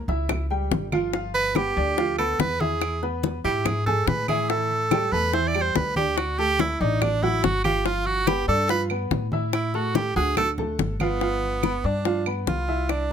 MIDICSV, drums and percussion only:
0, 0, Header, 1, 2, 480
1, 0, Start_track
1, 0, Tempo, 419874
1, 1300, Time_signature, 4, 2, 24, 8
1, 15006, End_track
2, 0, Start_track
2, 0, Title_t, "Drums"
2, 97, Note_on_c, 9, 63, 33
2, 99, Note_on_c, 9, 60, 37
2, 211, Note_off_c, 9, 63, 0
2, 213, Note_off_c, 9, 60, 0
2, 334, Note_on_c, 9, 63, 36
2, 334, Note_on_c, 9, 64, 82
2, 335, Note_on_c, 9, 75, 67
2, 336, Note_on_c, 9, 60, 69
2, 448, Note_off_c, 9, 63, 0
2, 448, Note_off_c, 9, 64, 0
2, 449, Note_off_c, 9, 75, 0
2, 450, Note_off_c, 9, 60, 0
2, 577, Note_on_c, 9, 63, 31
2, 691, Note_off_c, 9, 63, 0
2, 816, Note_on_c, 9, 63, 78
2, 818, Note_on_c, 9, 60, 68
2, 818, Note_on_c, 9, 61, 85
2, 930, Note_off_c, 9, 63, 0
2, 932, Note_off_c, 9, 60, 0
2, 932, Note_off_c, 9, 61, 0
2, 1055, Note_on_c, 9, 63, 78
2, 1056, Note_on_c, 9, 75, 64
2, 1059, Note_on_c, 9, 60, 37
2, 1169, Note_off_c, 9, 63, 0
2, 1170, Note_off_c, 9, 75, 0
2, 1173, Note_off_c, 9, 60, 0
2, 1293, Note_on_c, 9, 63, 38
2, 1298, Note_on_c, 9, 60, 67
2, 1407, Note_off_c, 9, 63, 0
2, 1412, Note_off_c, 9, 60, 0
2, 1532, Note_on_c, 9, 63, 35
2, 1647, Note_off_c, 9, 63, 0
2, 1773, Note_on_c, 9, 63, 85
2, 1779, Note_on_c, 9, 75, 64
2, 1783, Note_on_c, 9, 60, 55
2, 1887, Note_off_c, 9, 63, 0
2, 1893, Note_off_c, 9, 75, 0
2, 1898, Note_off_c, 9, 60, 0
2, 2015, Note_on_c, 9, 63, 34
2, 2129, Note_off_c, 9, 63, 0
2, 2253, Note_on_c, 9, 63, 33
2, 2263, Note_on_c, 9, 60, 68
2, 2367, Note_off_c, 9, 63, 0
2, 2378, Note_off_c, 9, 60, 0
2, 2498, Note_on_c, 9, 63, 32
2, 2498, Note_on_c, 9, 75, 70
2, 2612, Note_off_c, 9, 63, 0
2, 2612, Note_off_c, 9, 75, 0
2, 2737, Note_on_c, 9, 63, 78
2, 2741, Note_on_c, 9, 60, 78
2, 2741, Note_on_c, 9, 61, 91
2, 2852, Note_off_c, 9, 63, 0
2, 2855, Note_off_c, 9, 60, 0
2, 2855, Note_off_c, 9, 61, 0
2, 2978, Note_on_c, 9, 63, 89
2, 3093, Note_off_c, 9, 63, 0
2, 3218, Note_on_c, 9, 60, 64
2, 3220, Note_on_c, 9, 63, 39
2, 3222, Note_on_c, 9, 75, 68
2, 3332, Note_off_c, 9, 60, 0
2, 3334, Note_off_c, 9, 63, 0
2, 3336, Note_off_c, 9, 75, 0
2, 3462, Note_on_c, 9, 60, 38
2, 3463, Note_on_c, 9, 63, 36
2, 3577, Note_off_c, 9, 60, 0
2, 3577, Note_off_c, 9, 63, 0
2, 3697, Note_on_c, 9, 63, 85
2, 3701, Note_on_c, 9, 60, 60
2, 3812, Note_off_c, 9, 63, 0
2, 3816, Note_off_c, 9, 60, 0
2, 3939, Note_on_c, 9, 60, 37
2, 3942, Note_on_c, 9, 63, 34
2, 4053, Note_off_c, 9, 60, 0
2, 4056, Note_off_c, 9, 63, 0
2, 4177, Note_on_c, 9, 75, 68
2, 4178, Note_on_c, 9, 63, 33
2, 4178, Note_on_c, 9, 64, 78
2, 4181, Note_on_c, 9, 60, 72
2, 4291, Note_off_c, 9, 75, 0
2, 4292, Note_off_c, 9, 63, 0
2, 4292, Note_off_c, 9, 64, 0
2, 4295, Note_off_c, 9, 60, 0
2, 4421, Note_on_c, 9, 63, 35
2, 4421, Note_on_c, 9, 64, 71
2, 4535, Note_off_c, 9, 63, 0
2, 4535, Note_off_c, 9, 64, 0
2, 4659, Note_on_c, 9, 60, 74
2, 4659, Note_on_c, 9, 61, 86
2, 4659, Note_on_c, 9, 63, 79
2, 4773, Note_off_c, 9, 60, 0
2, 4773, Note_off_c, 9, 61, 0
2, 4773, Note_off_c, 9, 63, 0
2, 4896, Note_on_c, 9, 75, 65
2, 4897, Note_on_c, 9, 63, 90
2, 4900, Note_on_c, 9, 60, 33
2, 5010, Note_off_c, 9, 75, 0
2, 5011, Note_off_c, 9, 63, 0
2, 5015, Note_off_c, 9, 60, 0
2, 5139, Note_on_c, 9, 63, 36
2, 5142, Note_on_c, 9, 60, 68
2, 5253, Note_off_c, 9, 63, 0
2, 5257, Note_off_c, 9, 60, 0
2, 5381, Note_on_c, 9, 63, 35
2, 5495, Note_off_c, 9, 63, 0
2, 5616, Note_on_c, 9, 63, 95
2, 5618, Note_on_c, 9, 75, 70
2, 5621, Note_on_c, 9, 60, 57
2, 5730, Note_off_c, 9, 63, 0
2, 5732, Note_off_c, 9, 75, 0
2, 5735, Note_off_c, 9, 60, 0
2, 5853, Note_on_c, 9, 63, 31
2, 5967, Note_off_c, 9, 63, 0
2, 6095, Note_on_c, 9, 63, 36
2, 6099, Note_on_c, 9, 60, 65
2, 6209, Note_off_c, 9, 63, 0
2, 6213, Note_off_c, 9, 60, 0
2, 6333, Note_on_c, 9, 63, 34
2, 6340, Note_on_c, 9, 75, 72
2, 6447, Note_off_c, 9, 63, 0
2, 6454, Note_off_c, 9, 75, 0
2, 6576, Note_on_c, 9, 63, 82
2, 6580, Note_on_c, 9, 60, 76
2, 6580, Note_on_c, 9, 61, 89
2, 6691, Note_off_c, 9, 63, 0
2, 6694, Note_off_c, 9, 60, 0
2, 6694, Note_off_c, 9, 61, 0
2, 6814, Note_on_c, 9, 63, 88
2, 6928, Note_off_c, 9, 63, 0
2, 7057, Note_on_c, 9, 63, 37
2, 7060, Note_on_c, 9, 60, 71
2, 7061, Note_on_c, 9, 75, 66
2, 7171, Note_off_c, 9, 63, 0
2, 7174, Note_off_c, 9, 60, 0
2, 7175, Note_off_c, 9, 75, 0
2, 7295, Note_on_c, 9, 63, 40
2, 7301, Note_on_c, 9, 60, 35
2, 7409, Note_off_c, 9, 63, 0
2, 7415, Note_off_c, 9, 60, 0
2, 7537, Note_on_c, 9, 63, 88
2, 7540, Note_on_c, 9, 60, 62
2, 7651, Note_off_c, 9, 63, 0
2, 7654, Note_off_c, 9, 60, 0
2, 7776, Note_on_c, 9, 63, 32
2, 7784, Note_on_c, 9, 60, 36
2, 7890, Note_off_c, 9, 63, 0
2, 7898, Note_off_c, 9, 60, 0
2, 8021, Note_on_c, 9, 63, 32
2, 8021, Note_on_c, 9, 64, 84
2, 8021, Note_on_c, 9, 75, 68
2, 8022, Note_on_c, 9, 60, 65
2, 8135, Note_off_c, 9, 63, 0
2, 8135, Note_off_c, 9, 64, 0
2, 8136, Note_off_c, 9, 60, 0
2, 8136, Note_off_c, 9, 75, 0
2, 8262, Note_on_c, 9, 63, 33
2, 8262, Note_on_c, 9, 64, 69
2, 8376, Note_off_c, 9, 63, 0
2, 8376, Note_off_c, 9, 64, 0
2, 8502, Note_on_c, 9, 63, 77
2, 8504, Note_on_c, 9, 60, 77
2, 8504, Note_on_c, 9, 61, 95
2, 8617, Note_off_c, 9, 63, 0
2, 8618, Note_off_c, 9, 60, 0
2, 8618, Note_off_c, 9, 61, 0
2, 8737, Note_on_c, 9, 75, 64
2, 8741, Note_on_c, 9, 63, 90
2, 8743, Note_on_c, 9, 60, 40
2, 8851, Note_off_c, 9, 75, 0
2, 8855, Note_off_c, 9, 63, 0
2, 8857, Note_off_c, 9, 60, 0
2, 8979, Note_on_c, 9, 63, 37
2, 8981, Note_on_c, 9, 60, 75
2, 9093, Note_off_c, 9, 63, 0
2, 9095, Note_off_c, 9, 60, 0
2, 9223, Note_on_c, 9, 63, 38
2, 9337, Note_off_c, 9, 63, 0
2, 9455, Note_on_c, 9, 63, 91
2, 9457, Note_on_c, 9, 75, 61
2, 9460, Note_on_c, 9, 60, 63
2, 9570, Note_off_c, 9, 63, 0
2, 9572, Note_off_c, 9, 75, 0
2, 9574, Note_off_c, 9, 60, 0
2, 9696, Note_on_c, 9, 63, 35
2, 9810, Note_off_c, 9, 63, 0
2, 9937, Note_on_c, 9, 63, 38
2, 9938, Note_on_c, 9, 60, 73
2, 10051, Note_off_c, 9, 63, 0
2, 10052, Note_off_c, 9, 60, 0
2, 10174, Note_on_c, 9, 75, 72
2, 10177, Note_on_c, 9, 63, 33
2, 10288, Note_off_c, 9, 75, 0
2, 10292, Note_off_c, 9, 63, 0
2, 10414, Note_on_c, 9, 63, 82
2, 10417, Note_on_c, 9, 60, 69
2, 10417, Note_on_c, 9, 61, 86
2, 10528, Note_off_c, 9, 63, 0
2, 10531, Note_off_c, 9, 60, 0
2, 10531, Note_off_c, 9, 61, 0
2, 10652, Note_on_c, 9, 63, 88
2, 10766, Note_off_c, 9, 63, 0
2, 10892, Note_on_c, 9, 63, 38
2, 10897, Note_on_c, 9, 60, 74
2, 10898, Note_on_c, 9, 75, 67
2, 11007, Note_off_c, 9, 63, 0
2, 11011, Note_off_c, 9, 60, 0
2, 11012, Note_off_c, 9, 75, 0
2, 11132, Note_on_c, 9, 63, 37
2, 11134, Note_on_c, 9, 60, 38
2, 11246, Note_off_c, 9, 63, 0
2, 11248, Note_off_c, 9, 60, 0
2, 11375, Note_on_c, 9, 63, 90
2, 11378, Note_on_c, 9, 60, 66
2, 11489, Note_off_c, 9, 63, 0
2, 11493, Note_off_c, 9, 60, 0
2, 11614, Note_on_c, 9, 63, 36
2, 11615, Note_on_c, 9, 60, 34
2, 11728, Note_off_c, 9, 63, 0
2, 11730, Note_off_c, 9, 60, 0
2, 11854, Note_on_c, 9, 63, 35
2, 11854, Note_on_c, 9, 64, 90
2, 11855, Note_on_c, 9, 75, 74
2, 11856, Note_on_c, 9, 60, 67
2, 11969, Note_off_c, 9, 63, 0
2, 11969, Note_off_c, 9, 64, 0
2, 11969, Note_off_c, 9, 75, 0
2, 11970, Note_off_c, 9, 60, 0
2, 12095, Note_on_c, 9, 63, 36
2, 12095, Note_on_c, 9, 64, 73
2, 12209, Note_off_c, 9, 63, 0
2, 12209, Note_off_c, 9, 64, 0
2, 12334, Note_on_c, 9, 63, 81
2, 12338, Note_on_c, 9, 60, 72
2, 12338, Note_on_c, 9, 61, 95
2, 12448, Note_off_c, 9, 63, 0
2, 12453, Note_off_c, 9, 60, 0
2, 12453, Note_off_c, 9, 61, 0
2, 12574, Note_on_c, 9, 63, 88
2, 12576, Note_on_c, 9, 75, 61
2, 12583, Note_on_c, 9, 60, 36
2, 12688, Note_off_c, 9, 63, 0
2, 12691, Note_off_c, 9, 75, 0
2, 12697, Note_off_c, 9, 60, 0
2, 12819, Note_on_c, 9, 60, 61
2, 12819, Note_on_c, 9, 63, 35
2, 12933, Note_off_c, 9, 60, 0
2, 12933, Note_off_c, 9, 63, 0
2, 13060, Note_on_c, 9, 63, 37
2, 13174, Note_off_c, 9, 63, 0
2, 13295, Note_on_c, 9, 75, 63
2, 13296, Note_on_c, 9, 63, 56
2, 13300, Note_on_c, 9, 60, 59
2, 13410, Note_off_c, 9, 75, 0
2, 13411, Note_off_c, 9, 63, 0
2, 13415, Note_off_c, 9, 60, 0
2, 13777, Note_on_c, 9, 63, 31
2, 13780, Note_on_c, 9, 60, 65
2, 13891, Note_off_c, 9, 63, 0
2, 13894, Note_off_c, 9, 60, 0
2, 14018, Note_on_c, 9, 63, 32
2, 14018, Note_on_c, 9, 75, 67
2, 14133, Note_off_c, 9, 63, 0
2, 14133, Note_off_c, 9, 75, 0
2, 14258, Note_on_c, 9, 63, 76
2, 14260, Note_on_c, 9, 60, 70
2, 14260, Note_on_c, 9, 61, 80
2, 14373, Note_off_c, 9, 63, 0
2, 14374, Note_off_c, 9, 60, 0
2, 14374, Note_off_c, 9, 61, 0
2, 14495, Note_on_c, 9, 63, 34
2, 14609, Note_off_c, 9, 63, 0
2, 14738, Note_on_c, 9, 63, 35
2, 14738, Note_on_c, 9, 75, 59
2, 14741, Note_on_c, 9, 60, 65
2, 14852, Note_off_c, 9, 75, 0
2, 14853, Note_off_c, 9, 63, 0
2, 14855, Note_off_c, 9, 60, 0
2, 15006, End_track
0, 0, End_of_file